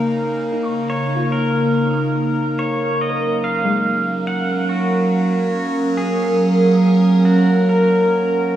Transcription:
0.00 2.59 C#3 medium
0.00 4.22 A#3 medium
0.00 8.56 A#3 medium
0.00 3.63 D#4 medium
0.00 0.95 A#4 medium
0.00 8.56 A#4 medium
0.00 0.81 D#6 medium
0.52 1.32 D#4 medium
0.63 2.07 C#6 medium
0.90 1.32 C#5 medium
1.15 4.02 F4 medium
1.32 2.62 A#4 medium
1.90 4.77 D#6 medium
2.58 8.56 F#3 medium
2.58 3.01 C#5 medium
2.92 8.56 C#4 medium
3.01 3.44 D#5 loud
3.09 5.97 A#4 medium
3.44 4.27 F5 loud
3.64 6.53 G#3 medium
3.82 8.56 A#4 medium
4.27 4.71 F#5 loud
4.69 5.97 F#4 medium
5.97 7.25 G#4 loud
7.25 7.70 F#4 medium
7.69 8.56 A#4 medium

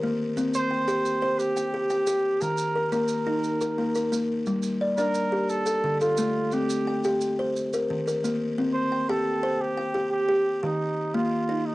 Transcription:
0.00 0.38 A#3 medium
0.00 0.38 A#4 medium
0.37 0.71 C4 medium
0.37 maracas medium
0.54 1.40 C5 loud
0.54 maracas medium
0.71 0.87 G5 medium
0.88 1.22 G4 medium
0.88 1.39 G5 medium
0.88 maracas medium
1.05 maracas medium
1.22 1.56 C5 medium
1.39 2.43 G4 medium
1.39 maracas medium
1.57 1.89 G5 medium
1.57 maracas medium
1.74 2.06 G4 medium
1.90 2.42 G5 medium
1.90 maracas medium
2.07 2.42 G4 medium
2.07 maracas medium
2.41 2.76 D#3 medium
2.41 2.92 A#4 loud
2.41 maracas medium
2.57 maracas medium
2.75 2.91 A#4 medium
2.92 3.27 A#3 medium
2.92 3.44 A#4 medium
2.92 4.25 A#4 medium
2.92 maracas medium
3.08 maracas medium
3.27 3.61 D#4 medium
3.44 maracas medium
3.61 3.94 A#4 medium
3.61 maracas medium
3.78 4.11 A#3 medium
3.95 4.47 A#4 medium
3.95 maracas medium
4.12 4.46 A#3 medium
4.12 maracas medium
4.46 4.81 G3 medium
4.46 maracas medium
4.62 maracas medium
4.81 4.97 D5 medium
4.97 5.32 D4 medium
4.97 5.51 A#4 medium
4.97 5.49 D5 medium
4.97 maracas medium
5.14 maracas medium
5.32 5.49 G4 medium
5.49 6.00 A4 loud
5.49 maracas medium
5.66 6.00 A4 medium
5.66 maracas medium
5.84 6.18 D3 medium
6.01 6.55 F4 medium
6.01 6.52 A4 medium
6.01 maracas medium
6.17 6.52 A3 medium
6.17 maracas medium
6.51 6.87 C4 medium
6.51 7.04 G4 medium
6.51 maracas medium
6.70 maracas medium
6.87 7.03 G5 medium
7.04 7.38 G4 medium
7.04 7.55 G5 medium
7.04 maracas medium
7.21 maracas medium
7.39 7.56 C5 medium
7.56 maracas medium
7.73 8.06 A#4 medium
7.73 maracas medium
7.90 8.24 D#3 medium
8.07 8.58 A#4 medium
8.07 maracas medium
8.24 8.58 A#3 medium
8.24 maracas medium
8.58 8.92 C4 medium
8.74 9.11 C5 loud
8.92 9.08 G5 medium
9.09 9.43 G4 medium
9.09 9.63 A4 medium
9.09 9.61 G5 medium
9.43 9.77 C5 medium
9.61 10.11 G4 loud
9.77 10.29 G5 medium
9.94 10.27 G4 medium
10.12 10.65 G4 medium
10.29 10.63 G4 medium
10.63 10.97 D#3 medium
10.63 11.16 D#4 medium
11.14 11.49 A#3 medium
11.14 11.68 F4 medium
11.49 11.75 D#4 medium
11.66 11.75 D#4 medium

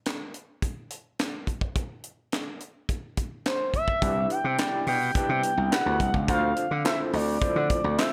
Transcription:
0.06 snare loud
0.06 clap medium
0.06 closed hi-hat medium
0.34 closed hi-hat medium
0.62 kick loud
0.62 closed hi-hat medium
0.90 closed hi-hat medium
1.19 snare loud
1.19 clap medium
1.19 closed hi-hat medium
1.47 kick medium
1.47 closed hi-hat medium
1.61 kick medium
1.76 kick loud
1.76 closed hi-hat medium
2.04 closed hi-hat medium
2.32 snare loud
2.32 clap loud
2.32 closed hi-hat medium
2.60 closed hi-hat medium
2.89 kick loud
2.89 closed hi-hat medium
3.17 kick medium
3.17 closed hi-hat medium
3.45 3.73 C5 medium
3.45 snare loud
3.45 clap medium
3.45 closed hi-hat medium
3.74 4.27 E5 medium
3.74 kick medium
3.74 closed hi-hat medium
3.88 kick medium
4.02 4.26 C2 loud
4.02 4.39 D4 medium
4.02 4.39 E4 medium
4.02 4.40 G4 medium
4.02 4.40 B4 medium
4.02 kick loud
4.02 closed hi-hat medium
4.30 4.84 G5 loud
4.30 closed hi-hat medium
4.44 4.56 C3 loud
4.58 4.96 D4 medium
4.58 4.96 E4 medium
4.58 4.96 G4 medium
4.58 4.96 D5 medium
4.58 snare loud
4.58 clap loud
4.58 closed hi-hat loud
4.87 5.10 B2 medium
4.87 5.14 G5 loud
4.87 open hi-hat medium
5.15 5.52 D4 medium
5.15 5.52 E4 medium
5.15 5.53 G4 medium
5.15 5.53 B4 medium
5.15 5.74 G5 loud
5.15 muted slap bass stroke soft
5.15 kick loud
5.15 closed hi-hat medium
5.29 5.41 C3 medium
5.43 closed hi-hat loud
5.57 5.69 C2 medium
5.71 6.09 D4 medium
5.71 6.09 E4 medium
5.71 6.09 G4 medium
5.71 6.09 B4 medium
5.71 6.01 F#5 loud
5.71 snare loud
5.71 clap loud
5.71 closed hi-hat medium
5.86 5.98 D2 medium
6.00 6.12 C2 medium
6.00 6.14 F#5 medium
6.00 kick medium
6.00 closed hi-hat medium
6.14 6.26 C#2 medium
6.14 kick medium
6.28 6.52 D2 loud
6.28 8.13 D3 medium
6.28 8.13 F3 medium
6.28 8.13 C4 medium
6.28 6.65 D4 medium
6.28 8.13 D4 medium
6.28 6.65 F4 medium
6.28 6.66 A4 medium
6.28 6.66 C5 loud
6.28 6.82 F5 loud
6.28 kick loud
6.28 closed hi-hat loud
6.56 closed hi-hat medium
6.71 6.83 D3 medium
6.85 7.22 E4 medium
6.85 7.22 F4 medium
6.85 7.22 A4 medium
6.85 7.22 C5 medium
6.85 6.99 E5 loud
6.85 snare loud
6.85 clap loud
6.85 closed hi-hat loud
7.13 7.37 D2 medium
7.13 8.01 D5 loud
7.13 open hi-hat medium
7.41 7.79 E4 medium
7.41 7.79 F4 medium
7.41 7.79 A4 medium
7.41 7.79 C5 medium
7.41 muted slap bass stroke soft
7.41 kick loud
7.41 closed hi-hat medium
7.56 7.68 D3 loud
7.70 kick loud
7.70 closed hi-hat loud
7.84 7.96 D2 medium
7.98 8.13 E4 medium
7.98 8.13 F4 medium
7.98 8.13 A4 medium
7.98 8.13 C5 loud
7.98 8.13 E5 loud
7.98 snare loud
7.98 clap loud
7.98 closed hi-hat medium

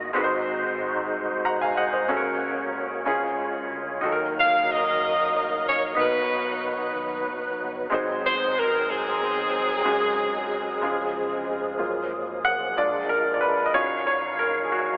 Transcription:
0.00 0.13 G1 medium
0.00 0.17 A#2 medium
0.00 0.11 A#3 medium
0.00 0.10 D#4 medium
0.00 0.11 D#4 soft
0.00 0.11 F#4 medium
0.00 0.12 F#4 soft
0.00 0.12 A#4 medium
0.00 0.11 D#5 medium
0.13 1.09 G#1 medium
0.13 1.09 G#2 medium
0.13 2.05 G#3 medium
0.13 2.05 C4 medium
0.13 2.05 D#4 medium
0.13 2.06 D#4 medium
0.13 2.05 F#4 medium
0.13 2.06 F#4 medium
0.13 0.22 B4 medium
0.18 0.23 B4 medium
0.18 2.09 C5 medium
0.24 1.47 C5 medium
1.13 1.42 C2 medium
1.44 1.74 B1 medium
1.44 1.61 F#5 soft
1.44 1.60 A#5 medium
1.61 1.77 F5 medium
1.61 1.77 G#5 medium
1.77 2.07 C2 medium
1.77 1.91 D#5 soft
1.77 1.93 F#5 medium
1.93 2.24 C5 soft
1.93 2.24 D#5 medium
2.08 3.03 C#2 medium
2.08 3.02 C#3 medium
2.08 2.17 A3 soft
2.08 3.04 C#4 medium
2.08 3.05 C#4 medium
2.08 3.06 F#4 medium
2.08 3.07 F#4 medium
2.08 2.16 A4 medium
2.08 3.05 C#5 medium
2.17 3.11 A#3 medium
2.17 3.10 A#4 medium
3.05 3.37 C#2 medium
3.05 3.99 C#3 medium
3.05 4.04 G#3 medium
3.05 4.03 C#4 medium
3.05 4.04 C#4 medium
3.05 3.13 E4 soft
3.05 4.04 F4 medium
3.05 4.04 G#4 medium
3.05 4.04 C#5 medium
3.13 4.07 F4 medium
3.39 3.69 C#2 medium
3.71 4.01 D2 medium
4.01 4.96 D#2 medium
4.01 4.96 D#3 medium
4.01 5.94 F#3 medium
4.01 5.94 A#3 medium
4.01 5.92 D#4 medium
4.01 5.94 D#4 medium
4.01 5.94 F#4 medium
4.01 5.94 A#4 medium
4.05 4.11 A4 medium
4.12 5.98 A#4 medium
4.39 4.68 F5 medium
4.71 5.63 F#4 medium
4.71 5.63 A#4 medium
4.71 5.34 D#5 loud
5.01 5.30 F#2 medium
5.33 5.63 A1 medium
5.33 5.65 D#5 medium
5.65 5.95 A#1 medium
5.65 5.82 C#5 medium
5.95 6.91 B1 loud
5.95 6.90 B2 medium
5.95 7.87 F#3 medium
5.95 7.87 B3 medium
5.95 7.86 D#4 medium
5.95 7.87 D#4 medium
5.95 7.88 F#4 soft
5.95 7.87 B4 medium
5.99 6.92 D#4 medium
5.99 6.92 F#4 medium
5.99 6.05 A#4 medium
5.99 6.68 B4 medium
6.06 7.92 B4 medium
6.95 7.25 D#2 medium
7.27 7.57 F#1 medium
7.59 7.89 G1 medium
7.90 8.85 G#1 medium
7.90 8.85 G#2 medium
7.90 9.83 F#3 medium
7.90 9.81 G#3 medium
7.90 9.82 C4 medium
7.90 9.83 C4 medium
7.90 9.82 D#4 medium
7.90 9.83 D#4 medium
7.90 9.83 F#4 medium
7.90 9.83 G#4 medium
7.94 9.83 C5 medium
8.26 8.55 C5 medium
8.59 8.90 A#4 medium
8.89 9.18 C2 medium
8.89 11.12 C4 medium
8.89 11.12 D#4 medium
8.89 11.16 G#4 medium
9.21 9.51 B1 medium
9.53 9.83 C2 medium
9.85 10.79 C#2 medium
9.85 10.82 C#3 medium
9.85 10.79 C#3 medium
9.85 10.83 F#3 medium
9.85 10.80 G#3 medium
9.85 10.82 G#3 medium
9.85 10.83 F#4 medium
9.85 9.92 G4 medium
9.85 10.82 G#4 medium
9.92 10.86 G#4 medium
10.81 11.12 C#2 medium
10.81 11.76 C#3 medium
10.81 11.80 C#3 medium
10.81 11.79 F3 medium
10.81 11.77 G#3 medium
10.81 11.80 G#3 medium
10.81 11.78 F4 medium
10.81 10.90 G4 medium
10.81 11.81 G#4 medium
10.90 11.78 G#4 medium
11.15 11.45 E1 medium
11.48 11.78 F1 medium
11.78 12.41 F#1 medium
11.78 12.77 F3 medium
11.78 12.77 F#3 medium
11.78 12.22 G#3 soft
11.78 12.22 A#3 soft
11.78 12.77 A#3 medium
11.78 12.23 F4 soft
11.78 12.77 G#4 medium
12.45 12.75 B1 medium
12.45 12.52 F#5 medium
12.77 13.38 A#1 medium
12.77 13.70 G#3 soft
12.77 13.74 G#3 medium
12.77 13.74 D4 soft
12.77 13.71 D4 soft
12.77 13.74 F4 soft
12.77 13.71 F4 medium
12.77 13.74 A#4 medium
12.77 13.11 D5 medium
13.09 13.36 A#4 medium
13.34 13.42 D5 medium
13.41 13.68 B4 medium
13.66 13.74 D#5 medium
13.73 14.35 F#1 medium
13.73 14.97 F#3 soft
13.73 14.97 F#3 medium
13.73 14.97 C#4 soft
13.73 14.97 D#4 medium
13.73 14.97 F4 medium
13.73 14.97 C#5 medium
13.73 14.05 C#5 medium
13.73 14.97 F5 soft
14.07 14.40 C#5 medium
14.39 14.97 A#1 medium
14.39 14.65 A#4 medium
14.64 14.71 G#4 soft
14.72 14.97 F#4 medium

